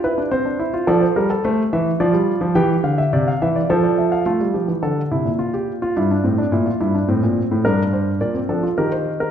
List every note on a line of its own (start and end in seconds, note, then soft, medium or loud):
0.04 0.18 E4 medium
0.04 0.21 B4 medium
0.18 0.31 D4 medium
0.31 0.45 C4 medium
0.31 0.86 C5 medium
0.45 0.59 D4 medium
0.59 0.73 E4 medium
0.74 0.87 F4 medium
0.87 1.05 F3 medium
0.87 1.28 A4 medium
0.87 1.01 D5 medium
1.01 1.15 C5 medium
1.16 1.34 G3 medium
1.16 1.30 A#4 medium
1.30 1.44 A4 medium
1.45 1.62 A3 medium
1.45 1.62 C5 medium
1.73 1.90 E3 medium
1.73 1.90 E5 medium
2.00 2.14 F3 medium
2.00 2.54 F4 medium
2.00 2.54 D5 medium
2.13 2.31 G3 medium
2.41 2.55 F3 medium
2.55 2.73 E3 medium
2.55 3.66 G4 medium
2.55 2.73 G5 medium
2.83 3.01 D3 medium
2.83 2.98 F5 medium
2.98 3.12 E5 medium
3.13 3.30 C3 medium
3.13 3.26 D5 medium
3.28 3.41 F5 medium
3.42 3.59 E3 medium
3.42 3.55 E5 medium
3.56 3.69 D5 medium
3.69 4.25 F3 medium
3.69 4.25 A4 medium
3.69 3.83 C5 medium
3.83 3.97 D5 medium
3.98 4.12 E5 medium
4.12 4.26 F5 medium
4.26 4.40 A3 medium
4.26 4.44 F4 medium
4.40 4.54 G3 medium
4.54 4.68 F3 medium
4.54 4.72 G4 medium
4.68 4.82 E3 medium
4.83 5.01 D3 medium
4.83 5.00 A4 medium
5.11 5.25 C3 medium
5.11 5.29 E4 medium
5.25 5.94 A#2 medium
5.39 5.53 F4 medium
5.54 5.71 G4 medium
5.82 5.96 F4 medium
5.97 6.14 G2 medium
5.97 6.10 E4 medium
6.11 6.25 D4 medium
6.24 6.42 A2 medium
6.24 6.38 C4 medium
6.38 6.52 D4 medium
6.52 6.70 A#2 medium
6.52 6.66 E4 medium
6.66 6.80 F4 medium
6.81 6.98 G2 medium
6.81 6.94 E4 medium
6.95 7.08 D4 medium
7.08 7.22 A2 medium
7.08 7.63 C4 medium
7.23 7.40 A#2 medium
7.51 7.64 A2 medium
7.65 8.19 G2 medium
7.65 8.19 D4 medium
7.65 7.82 A#4 medium
7.93 8.10 C5 medium
8.21 8.38 A#2 medium
8.21 8.34 A#3 medium
8.21 8.38 D5 medium
8.35 8.48 C4 medium
8.49 8.66 F3 medium
8.49 8.63 D4 medium
8.49 8.67 A4 medium
8.63 8.77 F4 medium
8.78 9.31 D#3 medium
8.78 9.31 G4 medium
8.78 8.91 A#4 medium
8.92 9.10 C5 medium
9.20 9.31 A#4 medium